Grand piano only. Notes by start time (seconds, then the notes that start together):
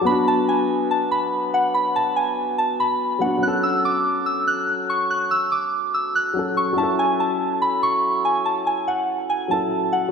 0.01 F#3 B3
0.08 D4 F#4
3.19 F#3 B3 D4
3.24 F#4
3.37 F#3
3.42 C#4
3.48 A4
6.34 F#3 C#4
6.39 A4
6.73 F#3 C#4
6.80 E4 A4
9.48 F#3 C#4 E4
9.53 A4